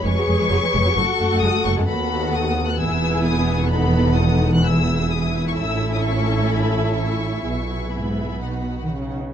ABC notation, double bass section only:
X:1
M:4/4
L:1/16
Q:1/4=130
K:E
V:1 name="Double bass section" clef=bass
^E,,, z E,,, z E,,, z E,,, z F,,, z F,,, z F,,, z F,,, z | D,,8 E,,,8- | E,,,16 | A,,,16 |
B,,,12- B,,,2 z2 |]